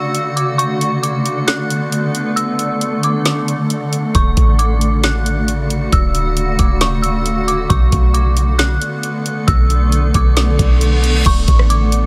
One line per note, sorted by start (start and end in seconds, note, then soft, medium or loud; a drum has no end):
0.00 0.56 C#3 medium
0.00 7.66 D3 medium
0.00 7.66 A3 medium
0.00 0.56 F#4 medium
0.00 7.66 D5 medium
0.00 0.34 E6 medium
0.00 4.11 C#7 loud
0.15 closed hi-hat medium
0.36 0.58 D6 medium
0.36 closed hi-hat medium
0.58 2.35 B3 medium
0.58 4.11 A4 medium
0.58 1.00 C#6 loud
0.58 closed hi-hat medium
0.81 closed hi-hat medium
1.03 1.45 D6 medium
1.03 closed hi-hat medium
1.26 closed hi-hat medium
1.47 2.33 F#6 medium
1.47 snare loud
1.47 closed hi-hat medium
1.70 closed hi-hat medium
1.92 closed hi-hat medium
2.15 closed hi-hat medium
2.36 4.13 C#3 medium
2.36 2.99 E6 medium
2.36 closed hi-hat medium
2.59 closed hi-hat medium
2.81 closed hi-hat medium
3.03 3.25 D6 medium
3.03 closed hi-hat medium
3.25 snare loud
3.25 closed hi-hat medium
3.48 closed hi-hat medium
3.70 closed hi-hat medium
3.93 closed hi-hat medium
4.14 4.36 D1 loud
4.14 7.67 C#3 medium
4.14 7.67 F#4 medium
4.14 4.57 C#6 loud
4.14 7.67 C#7 medium
4.14 kick loud
4.14 closed hi-hat medium
4.37 5.89 A1 loud
4.37 kick loud
4.37 closed hi-hat medium
4.59 5.01 D6 medium
4.59 closed hi-hat medium
4.81 closed hi-hat medium
5.04 5.89 F#6 medium
5.04 snare loud
5.04 closed hi-hat medium
5.26 closed hi-hat medium
5.48 closed hi-hat medium
5.70 closed hi-hat medium
5.92 6.56 D1 loud
5.92 6.55 E6 loud
5.92 kick loud
5.92 closed hi-hat medium
6.15 closed hi-hat medium
6.37 closed hi-hat medium
6.59 7.66 D1 loud
6.59 6.80 D6 medium
6.59 kick medium
6.59 closed hi-hat medium
6.81 7.02 C#6 medium
6.81 snare loud
6.81 closed hi-hat medium
7.02 7.45 E6 medium
7.02 closed hi-hat medium
7.26 closed hi-hat medium
7.48 7.69 D6 medium
7.48 closed hi-hat medium
7.70 7.92 B1 loud
7.70 11.22 D3 medium
7.70 11.22 A3 medium
7.70 11.22 B3 medium
7.70 11.22 A4 medium
7.70 11.22 D5 medium
7.70 8.12 C#6 loud
7.70 11.22 C#7 medium
7.70 kick loud
7.70 closed hi-hat medium
7.92 8.78 B1 loud
7.92 kick loud
7.92 closed hi-hat medium
8.14 8.56 D6 medium
8.14 closed hi-hat medium
8.37 closed hi-hat medium
8.59 9.44 F#6 medium
8.59 snare loud
8.59 closed hi-hat medium
8.82 closed hi-hat medium
9.03 closed hi-hat medium
9.26 closed hi-hat medium
9.47 10.12 B1 loud
9.47 10.10 E6 medium
9.47 kick loud
9.47 closed hi-hat medium
9.70 closed hi-hat medium
9.92 closed hi-hat medium
10.14 10.57 B1 loud
10.14 10.36 D6 medium
10.14 kick medium
10.14 closed hi-hat medium
10.37 snare loud
10.37 closed hi-hat medium
10.37 reverse cymbal medium
10.59 11.23 B1 loud
10.59 kick medium
10.59 closed hi-hat medium
10.81 closed hi-hat medium
11.04 closed hi-hat medium
11.25 11.47 D1 loud
11.25 12.06 C#3 medium
11.25 12.06 D3 medium
11.25 12.06 A3 medium
11.25 12.06 F#4 medium
11.25 12.06 D5 medium
11.25 11.68 C#6 loud
11.25 12.06 C#7 medium
11.25 kick loud
11.25 closed hi-hat medium
11.25 crash loud
11.48 12.06 A1 loud
11.48 kick loud
11.48 closed hi-hat medium
11.59 cross-stick loud
11.70 12.06 D6 medium
11.70 closed hi-hat medium
11.92 closed hi-hat medium